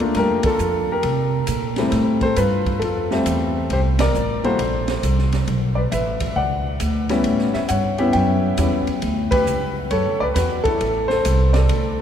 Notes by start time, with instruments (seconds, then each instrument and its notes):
Already playing: upright bass D2
0.00 grand piano A3 A#3 D4 F4
0.15 upright bass G2, grand piano G4 A#4, snare, ride
0.30 upright bass F2
0.43 upright bass D2, grand piano F4 A4, kick, ride
0.59 upright bass F2, hi-hat pedal
0.92 grand piano G4 A#4
1.03 upright bass C3, ride
1.47 upright bass A#2, hi-hat pedal, ride
1.76 grand piano G3 A3 C4 E4, snare, ride
1.92 upright bass A2, snare, ride
2.21 grand piano A4 C5, kick, ride
2.36 upright bass G2, grand piano F4 B4, hi-hat pedal, ride
2.66 kick, ride
2.80 upright bass F2, grand piano A4, ride
2.84 grand piano F4
3.11 grand piano G3 A3 C4 E5, snare
3.26 upright bass E2, hi-hat pedal, ride
3.70 upright bass C2, grand piano G4 C5, ride
3.99 grand piano A#4 D5, snare, ride
4.14 upright bass A1, hi-hat pedal
4.44 grand piano G3 A#3 E4 F#4 A4 C5, ride
4.59 upright bass A#1, ride
4.88 snare, ride
5.03 upright bass C2, hi-hat pedal, ride
5.18 snare
5.32 snare, ride
5.48 upright bass B1, ride
5.75 grand piano B4 D5
5.91 upright bass A1, grand piano B4 E5, hi-hat pedal, ride
6.20 kick, ride
6.36 upright bass C#2, grand piano D5 F#5
6.80 upright bass D2, hi-hat pedal, ride
7.09 grand piano G3 B3 C#4 E4, snare, ride
7.24 upright bass A2, ride
7.39 snare
7.53 grand piano C#5 E5, muted upright bass stroke, snare
7.69 upright bass G2, grand piano C#5 F#5, hi-hat pedal, ride
7.98 grand piano B3 C#4 E4 G4, ride
8.13 upright bass F#2, grand piano E5 G5, ride
8.58 upright bass E2, grand piano G3 B3 C#4 E4, hi-hat pedal, ride
8.87 muted upright bass stroke, ride
9.02 upright bass D2, ride
9.31 grand piano G4 B4, kick, ride
9.46 upright bass C#2, hi-hat pedal
9.91 upright bass F#2, grand piano A4 C#5, ride
10.06 upright bass D2
10.20 upright bass C#2, grand piano B4 D5
10.34 upright bass E2, grand piano F#4 B4, snare, hi-hat pedal, ride
10.64 grand piano A4, kick, ride
10.68 grand piano E4
10.80 upright bass A1, ride
11.08 grand piano C5, snare
11.12 grand piano A4
11.25 upright bass C2, hi-hat pedal, ride
11.53 grand piano D5, snare, ride
11.58 grand piano A4
11.69 upright bass D2, ride